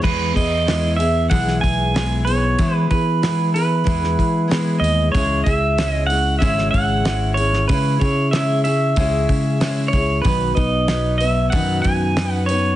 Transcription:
0.02 fingered electric bass E2, steel-string acoustic guitar E3 G#3 B3 E4 G#4, pedal steel guitar B4, kick, crash
0.34 fingered electric bass E2, steel-string acoustic guitar B3 E4 G#4, pedal steel guitar D#5, kick, open hi-hat
0.67 steel-string acoustic guitar G#3 B3 E4 G#4, snare, open hi-hat
0.96 steel-string acoustic guitar E4 G#4, pedal steel guitar E5, open hi-hat
1.02 steel-string acoustic guitar B3
1.29 fingered electric bass B1, steel-string acoustic guitar E3 G#3 B3 E4 G#4, pedal steel guitar F#5, kick, open hi-hat
1.48 snare
1.61 fingered electric bass B1, pedal steel guitar G#5, kick, open hi-hat
1.94 steel-string acoustic guitar G#3 B3 E4 G#4, snare, open hi-hat
2.25 steel-string acoustic guitar E4 G#4, pedal steel guitar C#5, open hi-hat
2.30 steel-string acoustic guitar B3
2.59 steel-string acoustic guitar E3 G#3 B3 E4 G#4, fingered electric bass E3, kick, open hi-hat
2.76 pedal steel guitar B4
2.90 fingered electric bass E3, steel-string acoustic guitar E4 G#4, pedal steel guitar B4, kick, open hi-hat
2.94 steel-string acoustic guitar B3
3.22 steel-string acoustic guitar G#3 B3 E4, snare, open hi-hat
3.26 steel-string acoustic guitar G#4
3.53 steel-string acoustic guitar B3 E4 G#4, pedal steel guitar B4, open hi-hat
3.84 fingered electric bass E2, steel-string acoustic guitar E3 G#3 B3 E4 G#4, kick, open hi-hat
4.04 snare
4.19 fingered electric bass E3, kick, open hi-hat
4.48 steel-string acoustic guitar G#3 B3 E4 G#4, snare, open hi-hat
4.80 fingered electric bass D#2, pedal steel guitar D#5
4.84 open hi-hat
5.12 fingered electric bass C#2, steel-string acoustic guitar C#3 G#3, pedal steel guitar C#5, kick, open hi-hat
5.16 steel-string acoustic guitar C#4 E4 G#4
5.44 fingered electric bass C#2, steel-string acoustic guitar E4 G#4, pedal steel guitar E5, kick, open hi-hat
5.48 steel-string acoustic guitar C#4
5.78 steel-string acoustic guitar G#3 C#4 E4 G#4, snare, open hi-hat
5.92 pedal steel guitar D#5
6.07 steel-string acoustic guitar G#4, pedal steel guitar F#5, open hi-hat
6.11 steel-string acoustic guitar C#4 E4
6.39 fingered electric bass G#1, steel-string acoustic guitar C#3 G#3 C#4 E4 G#4, pedal steel guitar E5, kick, open hi-hat
6.58 snare
6.71 fingered electric bass G#1, pedal steel guitar F#5, kick, open hi-hat
7.05 steel-string acoustic guitar G#3 C#4 E4 G#4, snare, open hi-hat
7.34 steel-string acoustic guitar G#4, pedal steel guitar C#5, open hi-hat
7.39 steel-string acoustic guitar C#4 E4
7.54 snare
7.68 fingered electric bass C#3, steel-string acoustic guitar C#3 G#3 C#4, pedal steel guitar B4, kick, open hi-hat
7.72 steel-string acoustic guitar E4 G#4
8.00 fingered electric bass C#3, steel-string acoustic guitar E4 G#4, pedal steel guitar C#5, kick, open hi-hat
8.04 steel-string acoustic guitar C#4
8.31 steel-string acoustic guitar G#3 C#4 E4, pedal steel guitar E5, snare, open hi-hat
8.36 steel-string acoustic guitar G#4
8.64 steel-string acoustic guitar E4 G#4, pedal steel guitar E5, open hi-hat
8.68 steel-string acoustic guitar C#4
8.96 fingered electric bass C#2, steel-string acoustic guitar C#3 G#3 C#4 E4 G#4, kick, open hi-hat
9.29 fingered electric bass C#3, kick, open hi-hat
9.60 steel-string acoustic guitar G#3 C#4 E4 G#4, snare, open hi-hat
9.88 pedal steel guitar C#5
9.93 fingered electric bass C#2, steel-string acoustic guitar E4 G#4, kick, open hi-hat
9.97 steel-string acoustic guitar C#4
10.22 fingered electric bass B1, steel-string acoustic guitar B2 D#3 F#3, pedal steel guitar B4, kick, open hi-hat
10.26 steel-string acoustic guitar B3 D#4 B4
10.55 fingered electric bass B1, steel-string acoustic guitar B3 D#4 B4, pedal steel guitar D#5, kick, open hi-hat
10.59 steel-string acoustic guitar F#3
10.88 steel-string acoustic guitar F#3 B3 D#4, snare, open hi-hat
10.93 steel-string acoustic guitar B4
11.18 steel-string acoustic guitar B4, pedal steel guitar E5, open hi-hat
11.23 steel-string acoustic guitar F#3 B3
11.50 fingered electric bass F#2, steel-string acoustic guitar B2 D#3, pedal steel guitar F#5, kick, open hi-hat
11.54 steel-string acoustic guitar F#3 B3 D#4 B4
11.82 fingered electric bass F#2, pedal steel guitar G#5, kick, open hi-hat
12.17 steel-string acoustic guitar F#3 B3 D#4, snare, open hi-hat
12.21 steel-string acoustic guitar B4
12.34 pedal steel guitar F#5
12.46 steel-string acoustic guitar B4, pedal steel guitar C#5, open hi-hat
12.51 steel-string acoustic guitar F#3 B3 D#4

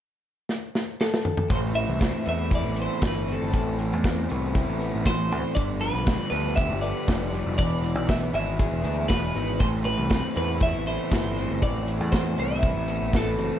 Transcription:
0.49 snare
0.75 snare
1.01 clean electric guitar A4, snare
1.14 snare
1.25 mid tom
1.37 mid tom
1.50 picked electric bass A1, overdriven electric guitar A2, distorted electric guitar A2 E3 A3 C4 E4, clean electric guitar C5, kick, closed hi-hat
1.73 overdriven electric guitar E3, clean electric guitar E5, closed hi-hat
1.89 picked electric bass C2
1.99 overdriven electric guitar C4, kick, snare, closed hi-hat
2.25 picked electric bass E2, distorted electric guitar A2 E3 A3 E4, overdriven electric guitar B3, clean electric guitar E5, closed hi-hat
2.51 overdriven electric guitar E4, kick, closed hi-hat
2.55 clean electric guitar D5
2.65 picked electric bass A1
2.76 overdriven electric guitar B3, closed hi-hat
2.82 clean electric guitar C5
3.02 picked electric bass G1, distorted electric guitar A2 E3 A3 E4, overdriven electric guitar E3, kick, snare, closed hi-hat
3.07 clean electric guitar B4
3.28 overdriven electric guitar C4, closed hi-hat
3.33 clean electric guitar A4
3.42 picked electric bass G1
3.52 picked electric bass A1, overdriven electric guitar A2, distorted electric guitar A2 E3 A3 E4, kick, closed hi-hat
3.78 overdriven electric guitar E3, closed hi-hat
3.93 picked electric bass E2
4.03 overdriven electric guitar C4, kick, snare, closed hi-hat
4.29 picked electric bass C2, distorted electric guitar A2 E3 A3 E4, overdriven electric guitar B3, closed hi-hat
4.54 overdriven electric guitar E4, kick, closed hi-hat
4.68 picked electric bass A1
4.80 overdriven electric guitar B3, closed hi-hat
4.94 picked electric bass A1
5.05 distorted electric guitar A2 E3 A3 E4, overdriven electric guitar E3, clean electric guitar C5, kick, snare, closed hi-hat
5.31 picked electric bass D2, overdriven electric guitar C4, closed hi-hat
5.55 picked electric bass G1, distorted electric guitar G2 D3 G3 B3 D4, overdriven electric guitar G2, clean electric guitar D5, kick, closed hi-hat
5.81 overdriven electric guitar F3, clean electric guitar B4, closed hi-hat
5.94 picked electric bass B1
6.07 overdriven electric guitar G3, kick, snare, closed hi-hat
6.30 picked electric bass D2, distorted electric guitar G2 D3 G3 B3 D4, overdriven electric guitar B3, clean electric guitar B4, closed hi-hat
6.56 overdriven electric guitar G4, clean electric guitar E5, kick, closed hi-hat
6.69 picked electric bass G1
6.81 overdriven electric guitar B3, clean electric guitar D5, closed hi-hat
7.07 picked electric bass F1, distorted electric guitar G2 D3 G3 B3 D4, overdriven electric guitar F3, kick, snare, closed hi-hat
7.32 overdriven electric guitar G3, closed hi-hat
7.45 picked electric bass F1
7.57 picked electric bass E1, overdriven electric guitar E2, distorted electric guitar E3 G#3 B3 E4, clean electric guitar D5, kick, closed hi-hat
7.84 overdriven electric guitar E3, closed hi-hat
7.95 picked electric bass B1
8.08 overdriven electric guitar B3, clean electric guitar E5, kick, snare, closed hi-hat
8.32 picked electric bass G#1, distorted electric guitar E3 G#3 B3 E4, overdriven electric guitar E4, clean electric guitar E5, closed hi-hat
8.59 overdriven electric guitar G#4, kick, closed hi-hat
8.72 picked electric bass E1
8.84 picked electric bass D2, overdriven electric guitar E4, closed hi-hat
9.08 picked electric bass E1, distorted electric guitar E3 G#3 B3 E4, overdriven electric guitar E3, clean electric guitar B4, kick, snare, closed hi-hat
9.35 picked electric bass G#1, overdriven electric guitar B3, closed hi-hat
9.58 picked electric bass A1, distorted electric guitar A2 E3 A3 C4 E4, overdriven electric guitar A2, clean electric guitar C5, kick, closed hi-hat
9.85 overdriven electric guitar E3, clean electric guitar B4, closed hi-hat
9.98 picked electric bass C2
10.10 overdriven electric guitar C4, kick, snare, closed hi-hat
10.35 picked electric bass E2, distorted electric guitar A2 E3 A3 E4, overdriven electric guitar B3, clean electric guitar B4, closed hi-hat
10.60 overdriven electric guitar E4, clean electric guitar E5, kick, closed hi-hat
10.74 picked electric bass A1
10.86 overdriven electric guitar B3, clean electric guitar C5, closed hi-hat
11.11 picked electric bass G1, distorted electric guitar A2 E3 A3 E4, overdriven electric guitar E3, kick, snare, closed hi-hat
11.36 overdriven electric guitar C4, closed hi-hat
11.50 picked electric bass G1
11.61 picked electric bass A1, overdriven electric guitar A2, distorted electric guitar A2 E3 A3 E4, clean electric guitar D5, kick, closed hi-hat
11.86 overdriven electric guitar E3, closed hi-hat
12.01 picked electric bass E2
12.11 overdriven electric guitar C4, clean electric guitar C5, kick, snare, closed hi-hat
12.36 picked electric bass C2, distorted electric guitar A2 E3 A3 E4, overdriven electric guitar B3, clean electric guitar E5, closed hi-hat
12.61 overdriven electric guitar E4, kick, closed hi-hat
12.76 picked electric bass A1
12.88 overdriven electric guitar B3, closed hi-hat
13.02 picked electric bass A1
13.13 distorted electric guitar A2 E3 A3 E4, overdriven electric guitar E3, clean electric guitar A4, kick, snare, closed hi-hat
13.38 picked electric bass F#1, overdriven electric guitar C4, closed hi-hat

